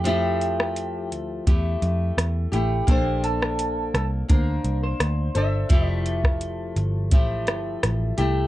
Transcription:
Already playing: F2 G4
0.04 F3 A3 E4 G4, closed hi-hat
0.41 closed hi-hat
0.60 cross-stick
0.76 closed hi-hat
1.11 D2, closed hi-hat
1.47 E2 A3 E4 G4, kick, closed hi-hat
1.82 F2, closed hi-hat
2.18 E2, cross-stick, closed hi-hat
2.52 A1 A3 E4 G4, closed hi-hat
2.87 A#1 A#3 D4 A4 C5, kick, closed hi-hat
3.24 A4, closed hi-hat
3.42 cross-stick
3.59 closed hi-hat
3.94 C2 A4, cross-stick, closed hi-hat
4.28 D2 A#3 D4 A#4 C5, kick, closed hi-hat
4.64 C2, closed hi-hat
4.84 C5
5.00 D2, cross-stick, closed hi-hat
5.35 G1 D4 A4 C5 E5, closed hi-hat
5.69 F1 F3 A3 E4 G4, kick, closed hi-hat
5.87 D5
6.06 closed hi-hat
6.24 kick, cross-stick
6.41 closed hi-hat
6.76 G1, closed hi-hat
7.11 A1 F3 A3 E4 G4, kick, closed hi-hat
7.47 G1, cross-stick, closed hi-hat
7.83 A1, cross-stick, closed hi-hat
8.18 C2 A3 E4 G4, closed hi-hat

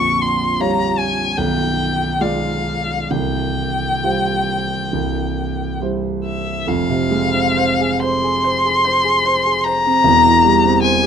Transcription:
Already playing: A#0 A#1 C#6
0.22 C6
0.60 G3 F4 C#5 A#5
0.98 G#5
1.37 B0 B1 G5
2.21 G#3 F4 D5 F5
3.11 C1 C2 G5
4.04 G3 F4 C5
4.93 C1 C2
5.81 G3 E4 C5
6.25 E5
6.67 F1 F2 F5
6.90 C3
7.11 G#3
7.33 C4
7.57 C5
7.80 G#4
8.00 C5 C6
8.23 G#4
8.44 C5
8.65 G#4
8.85 C5
9.04 G#4
9.25 C5
9.46 G#4
9.64 C5 A#5
9.86 C4
10.04 E1 E2
10.26 E3
10.45 G3
10.64 C4
10.82 C5 G#5
11.03 G4

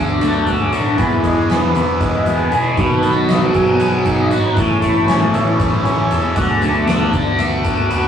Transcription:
Already playing: D2 B2 D3 F#3 A3 B3 D4
0.21 D2 F#3 A3 D4 A4, closed hi-hat
0.34 low conga
0.47 D2 D4 F#4, kick, closed hi-hat, high conga
0.60 F#3 G#4, low conga
0.72 A2 F#4 A4, snare, closed hi-hat
0.97 E2 E3 G#3 B3 B4, kick, closed hi-hat, high conga
1.11 low conga
1.22 E2 G#3 B3 A4, kick, closed hi-hat
1.35 G#4
1.49 E2 B3, snare, closed hi-hat
1.63 high conga
1.75 E2 E3, closed hi-hat, low conga
1.86 B3
2.00 E2 G#3, kick, snare, closed hi-hat
2.14 low conga
2.25 E2 B3 G#4, closed hi-hat, high conga, low conga
2.39 low conga
2.48 B2 G#4 A4, closed hi-hat
2.77 B1 B2 D#3 F#3 B3 B4, kick, closed hi-hat, high conga
2.89 low conga
3.03 B1 B3 A4, closed hi-hat
3.10 F#3
3.28 B1 D#4, snare, closed hi-hat
3.53 B1 F#3 G#4, kick, closed hi-hat, low conga
3.73 B3
3.80 B1 B3, closed hi-hat
4.05 B1 D#4, kick, closed hi-hat, high conga
4.17 low conga
4.31 G#2 F#4, snare, closed hi-hat
4.35 B3
4.56 A1 A2 E3 A3 C#4 E4, kick, closed hi-hat, high conga
4.69 G#4, low conga
4.80 A1 A3 A4, kick, closed hi-hat
4.94 B2 B4
5.07 A1 C#4 C#5, snare, closed hi-hat
5.20 A4, high conga
5.33 A1 E3, closed hi-hat, low conga
5.57 A1 E3 F#3 A3 C#4, kick, closed hi-hat
5.71 low conga
5.84 A1 C#4 G#4, closed hi-hat, high conga
5.96 low conga
6.10 E2 G#4 A4, closed hi-hat
6.23 B3
6.35 D2 D3 F#3 A3 D4 F#4, kick, closed hi-hat, high conga
6.48 G#4, low conga
6.62 D2 A3, closed hi-hat
6.76 A4
6.85 D2 B3 D4, snare, closed hi-hat
7.00 high conga
7.12 D2 D3, kick, closed hi-hat, low conga
7.38 D2 A3, closed hi-hat
7.49 B2, low conga
7.64 D2 D4, kick, closed hi-hat, high conga
7.77 low conga
7.89 D#2 F#4 B4, closed hi-hat

